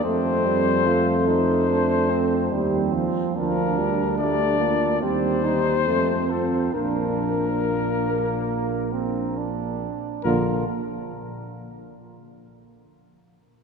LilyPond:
<<
  \new Staff \with { instrumentName = "Trumpet" } { \time 4/4 \key bes \major \tempo 4 = 70 c''4. c''2 r8 | bes'4 d''4 c''4. a'8 | bes'2. r4 | bes'8 r2. r8 | }
  \new Staff \with { instrumentName = "French horn" } { \time 4/4 \key bes \major a'2. g'8 f'8 | f'8 r8 g'8 f'8 g'4 a'8 f'8 | d'2.~ d'8 r8 | bes8 r2. r8 | }
  \new Staff \with { instrumentName = "Flugelhorn" } { \time 4/4 \key bes \major c'4 f'8 ees'8 d'8 c'8 c'4 | d'2 c'8 ees'8 c'8 r8 | d'4 bes4. c'8 d'4 | f'8 r2. r8 | }
  \new Staff \with { instrumentName = "Euphonium" } { \time 4/4 \key bes \major a8 g8 a4 a4 g8 f8 | f8 g8 a8 bes8 g8 r8 a8 c'8 | bes2.~ bes8 r8 | d8 r2. r8 | }
  \new Staff \with { instrumentName = "Tuba" } { \clef bass \time 4/4 \key bes \major f,2. ees,8 r8 | d,2 ees,4 f,4 | bes,,2.~ bes,,8 r8 | bes,,8 r2. r8 | }
>>